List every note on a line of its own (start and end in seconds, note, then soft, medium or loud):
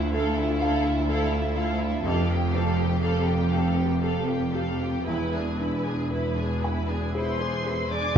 0.00 2.01 D2 medium
0.00 2.02 D2 medium
0.00 0.14 E4 medium
0.00 0.42 E4 medium
0.00 0.15 F4 medium
0.00 1.57 F4 medium
0.00 0.14 E5 medium
0.14 0.37 E4 medium
0.14 0.90 A4 medium
0.14 0.36 A4 medium
0.14 0.36 F5 medium
0.37 0.62 E4 medium
0.37 0.61 F4 medium
0.37 0.61 E5 medium
0.61 0.86 E4 medium
0.61 0.85 A4 medium
0.61 0.85 F5 medium
0.61 1.38 F5 medium
0.84 1.09 E4 medium
0.84 1.09 F4 medium
0.84 1.09 E5 medium
1.07 1.32 E4 medium
1.07 1.30 A4 medium
1.07 1.86 A4 medium
1.07 1.31 F5 medium
1.31 1.56 E4 medium
1.31 1.57 F4 medium
1.31 1.58 E5 medium
1.55 1.82 E4 medium
1.55 2.06 F4 medium
1.55 1.81 A4 medium
1.55 1.82 F5 medium
1.78 2.04 E4 medium
1.78 2.06 F4 medium
1.78 2.06 E5 medium
2.03 5.03 F1 medium
2.03 5.03 F2 medium
2.03 2.28 G4 medium
2.03 2.27 A4 medium
2.03 2.29 F5 medium
2.27 2.54 F4 medium
2.27 2.53 G4 medium
2.27 2.55 G5 medium
2.53 3.34 C4 medium
2.53 2.79 G4 medium
2.53 2.78 A4 medium
2.53 2.79 F5 medium
2.77 3.04 F4 medium
2.77 3.03 G4 medium
2.77 3.03 G5 medium
3.01 3.27 G4 medium
3.01 3.26 A4 medium
3.01 3.84 A4 medium
3.01 3.26 F5 medium
3.26 3.54 F4 medium
3.26 3.52 G4 medium
3.26 3.53 G5 medium
3.52 3.79 G4 medium
3.52 3.78 A4 medium
3.52 3.78 F5 soft
3.52 4.34 G5 soft
3.77 4.04 F4 soft
3.77 4.03 G4 soft
3.77 4.03 G5 soft
4.02 4.27 G4 medium
4.02 4.27 A4 soft
4.02 4.86 A4 soft
4.02 4.27 F5 medium
4.27 4.54 F4 soft
4.27 4.54 G4 soft
4.27 4.55 G5 soft
4.54 4.81 G4 soft
4.54 5.07 G4 soft
4.54 4.80 A4 soft
4.54 4.81 F5 soft
4.80 5.07 F4 soft
4.80 5.07 G4 soft
4.80 5.08 G5 soft
5.05 7.92 E1 medium
5.05 7.92 E2 medium
5.05 8.13 E2 medium
5.05 5.31 E4 medium
5.05 5.30 B4 soft
5.05 5.32 B5 soft
5.32 5.59 D4 soft
5.32 5.59 G#4 soft
5.32 5.60 G#5 soft
5.58 6.42 D4 soft
5.58 5.85 E4 soft
5.58 5.85 B4 soft
5.58 5.86 B5 soft
5.84 6.10 D4 soft
5.84 6.11 G#4 soft
5.84 6.11 G#5 soft
6.10 6.35 E4 soft
6.10 6.94 B4 soft
6.10 6.35 B4 soft
6.10 6.35 B5 soft
6.36 6.62 D4 soft
6.36 6.64 G#4 soft
6.36 6.63 G#5 soft
6.61 6.88 E4 soft
6.61 6.89 B4 soft
6.61 7.47 G#5 soft
6.61 6.89 B5 soft
6.88 7.14 D4 soft
6.88 7.15 G#4 soft
6.88 7.15 G#5 soft
7.14 7.38 E4 soft
7.14 7.65 G#4 soft
7.14 7.39 B4 soft
7.14 7.93 C5 medium
7.14 7.39 B5 soft
7.14 7.89 C6 medium
7.40 7.66 D4 soft
7.40 7.66 G#4 soft
7.40 7.67 G#5 soft
7.66 7.92 E4 soft
7.66 8.17 G#4 soft
7.66 7.93 B4 soft
7.66 7.93 B5 soft
7.92 8.17 D4 soft
7.92 8.17 G#4 soft
7.92 8.17 D5 medium
7.92 8.17 G#5 medium
7.92 8.17 D6 medium